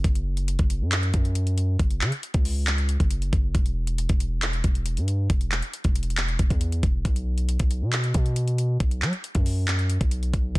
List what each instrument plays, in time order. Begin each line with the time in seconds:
0.04 808-style bass F#1, kick, closed hi-hat
0.15 closed hi-hat
0.37 closed hi-hat
0.48 closed hi-hat
0.59 808-style bass F#1, kick, closed hi-hat
0.70 closed hi-hat
0.81 808-style bass F#2
0.92 clap, closed hi-hat
1.03 closed hi-hat
1.14 808-style bass F#2, kick, closed hi-hat
1.25 closed hi-hat
1.35 closed hi-hat
1.47 closed hi-hat
1.58 closed hi-hat
1.79 808-style bass F#1, kick, closed hi-hat
1.91 closed hi-hat
2.01 808-style bass C#3, clap
2.12 closed hi-hat
2.23 closed hi-hat
2.34 808-style bass C#2, kick, closed hi-hat
2.45 open hi-hat
2.67 clap, closed hi-hat
2.78 closed hi-hat
2.89 closed hi-hat
3.00 808-style bass F#1, kick, closed hi-hat
3.11 closed hi-hat
3.22 closed hi-hat
3.33 808-style bass F#1, kick, closed hi-hat
3.55 808-style bass E1, kick, closed hi-hat
3.66 closed hi-hat
3.87 closed hi-hat
3.98 closed hi-hat
4.09 808-style bass E1, kick, closed hi-hat
4.20 closed hi-hat
4.42 clap, closed hi-hat
4.53 closed hi-hat
4.64 808-style bass E1, kick, closed hi-hat
4.75 closed hi-hat
4.86 closed hi-hat
4.97 808-style bass G2, closed hi-hat
5.08 closed hi-hat
5.30 808-style bass E1, kick, closed hi-hat
5.41 closed hi-hat
5.52 clap
5.62 closed hi-hat
5.74 closed hi-hat
5.84 808-style bass E1, kick, closed hi-hat
5.95 closed hi-hat, open hi-hat
6.03 closed hi-hat
6.10 closed hi-hat
6.17 clap, closed hi-hat
6.28 closed hi-hat
6.39 808-style bass E1, kick, closed hi-hat
6.50 808-style bass E2, kick, closed hi-hat
6.61 closed hi-hat
6.72 closed hi-hat
6.83 808-style bass E1, kick, closed hi-hat
7.05 808-style bass B1, kick, closed hi-hat
7.16 closed hi-hat
7.38 closed hi-hat
7.49 closed hi-hat
7.59 808-style bass B1, kick, closed hi-hat
7.71 closed hi-hat
7.82 808-style bass B2
7.93 clap, closed hi-hat
8.04 closed hi-hat
8.14 808-style bass B2, kick, closed hi-hat
8.26 closed hi-hat
8.36 closed hi-hat
8.48 closed hi-hat
8.58 closed hi-hat
8.80 808-style bass B1, kick, closed hi-hat
8.91 closed hi-hat
9.02 808-style bass F#3, clap
9.13 closed hi-hat
9.24 closed hi-hat
9.35 808-style bass F#2, kick, closed hi-hat
9.46 open hi-hat
9.68 clap, closed hi-hat
9.79 closed hi-hat
9.90 closed hi-hat
10.01 808-style bass B1, kick, closed hi-hat
10.11 closed hi-hat
10.23 closed hi-hat
10.34 808-style bass B1, kick, closed hi-hat
10.55 808-style bass G1, kick, closed hi-hat